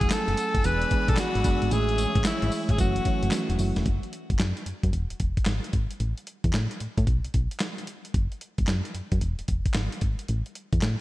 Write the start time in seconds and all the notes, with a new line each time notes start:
Already playing: F#3 A3 C#4 E4 G#4 F#5 G#5 E6
0.01 E1, kick, closed hi-hat
0.10 A4, snare, clap, closed hi-hat, tambourine
0.28 F#1, closed hi-hat
0.37 closed hi-hat, tambourine
0.55 F#1, kick, closed hi-hat
0.64 E1 E3 G#3 B3 D4 G#4 B4 D5 B5, closed hi-hat, tambourine
0.82 closed hi-hat
0.91 B1 E3 G#3 B3 D4 G#4, kick, closed hi-hat
1.08 B1 A4, kick, closed hi-hat
1.17 F#4, snare, clap, closed hi-hat, tambourine
1.35 G#1, closed hi-hat
1.44 F#1 E3 G#3 B3 D4 G#4, kick, closed hi-hat, tambourine
1.62 G#1, closed hi-hat
1.71 A1 E3 G#3 A3 C#4 G#4 C#5 E5, closed hi-hat, tambourine
1.89 closed hi-hat
1.98 closed hi-hat, tambourine
2.15 A1, kick, closed hi-hat
2.24 E4, snare, clap, closed hi-hat, tambourine
2.42 G#1, closed hi-hat
2.52 open hi-hat, tambourine
2.69 A1 G#4, kick, closed hi-hat
2.78 F#1 E3 F#3 A3 C#4 F#4 C#5 F#5, kick, closed hi-hat, tambourine
2.96 closed hi-hat
3.05 F#1 E3 F#3 A3 C#4 E4, kick, closed hi-hat
3.23 F#1, closed hi-hat
3.31 snare, clap, closed hi-hat, tambourine
3.50 E1, closed hi-hat
3.59 F#1 E3 F#3 A3 C#4 F#4, open hi-hat, tambourine
3.76 E1, snare, closed hi-hat
3.86 F#1, kick, closed hi-hat
4.03 closed hi-hat
4.13 closed hi-hat
4.30 F#1, kick, closed hi-hat
4.39 F#2, snare, clap, closed hi-hat
4.57 closed hi-hat
4.66 F#2, closed hi-hat
4.83 F#2, kick, closed hi-hat
4.93 E1, closed hi-hat
5.10 E1, closed hi-hat
5.20 E1, kick, closed hi-hat
5.37 kick, closed hi-hat
5.46 G#1, snare, clap, closed hi-hat
5.64 closed hi-hat
5.73 G#1, kick, closed hi-hat
5.91 closed hi-hat
6.00 A1, closed hi-hat
6.18 closed hi-hat
6.27 closed hi-hat
6.44 E2, kick, closed hi-hat
6.53 A2, snare, clap, closed hi-hat
6.71 closed hi-hat
6.80 A2, closed hi-hat
6.98 A2, kick, closed hi-hat
7.07 B1, kick, closed hi-hat
7.24 B1, closed hi-hat
7.34 B1, kick, closed hi-hat
7.51 closed hi-hat
7.60 snare, clap, closed hi-hat
7.78 closed hi-hat
7.87 closed hi-hat
8.05 closed hi-hat
8.14 F#1, kick, closed hi-hat
8.32 closed hi-hat
8.41 closed hi-hat
8.58 F#1, kick, closed hi-hat
8.67 F#2, snare, clap, closed hi-hat
8.85 closed hi-hat
8.95 F#2, closed hi-hat
9.12 F#2, kick, closed hi-hat
9.21 E1, closed hi-hat
9.39 E1, closed hi-hat
9.48 E1, kick, closed hi-hat
9.66 kick, closed hi-hat
9.74 G#1, snare, clap, closed hi-hat
9.92 closed hi-hat
10.01 G#1, kick, closed hi-hat
10.19 closed hi-hat
10.28 A1, closed hi-hat
10.46 closed hi-hat
10.55 closed hi-hat
10.73 E2, kick, closed hi-hat
10.82 A2, snare, clap, closed hi-hat